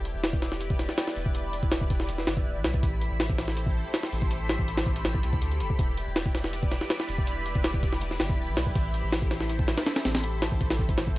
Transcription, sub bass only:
0.00 0.13 E1 loud
0.14 0.87 E1 medium
1.16 1.61 E1 loud
1.63 2.07 E1 medium
2.09 2.25 E1 loud
2.27 2.44 G1 loud
2.46 2.57 D1 medium
2.56 2.64 B1 medium
2.65 2.81 B1 loud
2.83 3.10 A1 loud
3.11 3.84 A1 loud
4.12 4.58 A1 loud
4.59 5.04 A1 loud
5.05 5.22 A1 loud
5.24 5.40 C2 medium
5.42 5.62 D2 medium
5.60 5.69 E1 medium
5.79 6.06 E1 medium
6.07 6.80 E1 medium
7.09 7.54 E1 loud
7.55 8.00 E1 loud
8.01 8.18 E1 loud
8.20 8.37 G1 loud
8.38 8.49 D1 medium
8.48 8.56 B1 medium
8.57 8.74 B1 medium
8.75 9.02 A1 medium
9.04 9.76 A1 medium
10.05 10.50 A1 loud
10.52 10.96 A1 loud
10.98 11.19 A1 medium

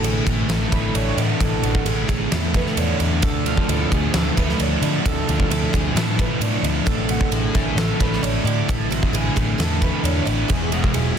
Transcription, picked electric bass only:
0.03 0.19 A1 medium
0.26 0.42 A1 medium
0.48 0.64 A1 medium
0.72 0.88 A1 medium
0.94 1.10 A1 medium
1.16 1.33 A2 medium
1.40 1.56 A1 medium
1.62 1.78 A1 medium
1.85 2.01 A1 medium
2.09 2.25 A1 medium
2.32 2.63 E2 medium
2.76 2.92 E2 medium
3.00 3.23 E2 medium
3.23 3.54 D2 medium
3.68 3.84 D2 medium
3.92 4.07 D2 medium
4.14 4.30 D2 medium
4.37 4.53 D2 medium
4.60 4.75 D2 medium
4.81 4.97 D3 medium
5.06 5.21 D2 medium
5.29 5.44 D2 medium
5.50 5.66 D2 medium
5.74 5.89 D2 medium
5.95 6.26 A2 medium
6.40 6.56 A2 medium
6.63 6.79 D2 medium
6.87 7.18 A1 medium
7.31 7.47 A1 medium
7.55 7.70 A1 medium
7.75 7.92 A1 medium
8.00 8.16 A1 medium
8.23 8.38 A1 medium
8.44 8.60 A2 medium
8.69 8.84 A1 medium
8.89 9.05 A1 medium
9.13 9.29 A1 medium
9.37 9.52 A1 medium
9.59 9.90 E2 medium
10.03 10.19 E2 medium
10.27 10.42 A1 medium
10.50 10.81 E1 medium
10.95 11.10 E1 loud

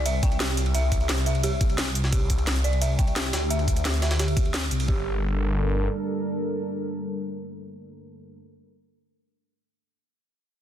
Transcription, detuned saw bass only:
0.00 0.21 C2 medium
0.23 1.59 C2 medium
1.61 2.11 C2 medium
2.12 2.46 C2 medium
2.47 2.97 C2 loud
2.99 3.32 C2 loud
3.33 4.70 D2 loud
4.71 4.87 C2 loud
4.88 5.88 G1 loud

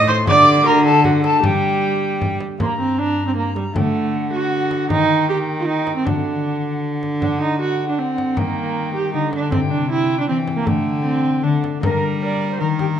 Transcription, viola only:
0.08 0.16 C5 loud
0.28 0.65 D5 loud
0.66 0.85 A#4 loud
0.85 1.06 A4 medium
1.05 1.22 F#4 medium
1.23 1.41 A4 medium
1.42 2.39 G4 medium
2.61 2.78 A#3 medium
2.80 3.00 C4 medium
2.98 3.27 D4 medium
3.28 3.36 C4 medium
3.36 3.55 A#3 medium
3.56 3.64 G3 medium
3.75 4.32 A3 medium
4.33 4.89 F#4 medium
4.90 5.28 D#4 medium
5.29 5.37 G4 medium
5.60 5.67 F4 medium
5.68 5.96 D#4 medium
5.96 6.07 C4 medium
6.06 6.83 D4 medium
7.21 7.40 D4 medium
7.41 7.59 D#4 medium
7.60 7.89 F#4 medium
7.89 8.00 D4 medium
7.98 8.39 C4 medium
8.38 8.94 A#3 medium
8.95 9.14 G4 medium
9.15 9.33 D#4 medium
9.34 9.51 D4 medium
9.52 9.59 C4 medium
9.70 9.90 D4 medium
9.90 10.19 E4 medium
10.20 10.28 D4 medium
10.29 10.37 C4 medium
10.56 10.67 A#3 medium
10.66 11.04 A3 medium
11.04 11.45 C4 medium
11.43 11.82 D4 medium
11.82 12.19 A#4 medium
12.21 12.59 A#4 medium
12.60 12.99 A#4 medium

